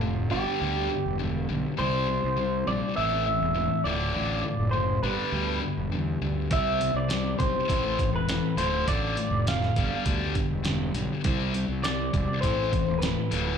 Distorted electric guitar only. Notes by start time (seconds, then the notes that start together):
0.01 D2 A2
0.30 G2 D3 G3
0.60 G2 D3 G3
0.89 G2 D3
1.19 G2 D3
1.49 G2 D3
1.77 C3 G3 C4
2.07 C3 G3
2.36 C3 G3
2.67 C3 G3
2.97 A2 E3 A3
3.27 A2 E3
3.54 A2 E3
3.85 D2 A2 D3
4.14 D2 A2 D3
4.44 D2 A2
4.73 D2 A2
5.03 G2 D3 G3
5.32 G2 D3 G3
5.62 G2 D3
5.92 G2 D3
6.22 G2 D3
6.51 C3 G3 C4
6.81 C3 G3
7.09 C3 G3
7.38 C3 G3
7.68 A2 E3 A3
7.99 A2 E3
8.29 A2 E3
8.57 D2 A2 D3
8.87 D2 A2 D3
9.17 D2 A2
9.47 D2 A2
9.77 G2 D3 G3
10.06 G2 D3 G3
10.35 G2 D3
10.64 G2 D3
10.94 G2 D3
11.24 C3 G3 C4
11.54 C3 G3
11.83 C3 G3
12.13 C3 G3
12.42 A2 E3 A3
12.72 A2 E3
13.02 A2 E3
13.31 D2 A2 D3